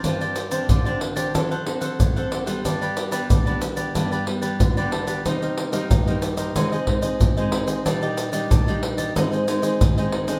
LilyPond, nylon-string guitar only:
\new Staff \with { instrumentName = "Nylon-string guitar" } { \time 4/4 \key g \phrygian \tempo 4 = 92 << { <f c' d'>8 r16 <f c' d'>8 <f c' d'>8. <c' d' a'>16 r16 <c' d' a'>8. <c' d' a'>8 <g b d'>16~ | <g b d'>8. <g b d'>8 <g b d'>8. <g b d'>8 <g b d'>8. <g b d'>8. | <g bes ees'>8. <g bes ees'>8 <g bes ees'>8. <aes c' ees'>16 r16 <aes c' ees'>8 r16 <aes c' ees'>8. | <g d' ees'>8. <g d' ees'>8 <g d' ees'>8. <aes c' ees'>8 <aes c' ees'>8 r16 <aes c' ees'>8 <c' d' a'>16 | } \\ { g,4 d4 fis4 fis4 | g,4 d4 g,4 d4 | c4 g,4 c4 c4 | bes,4 bes,4 aes,4 ees4 | } >> }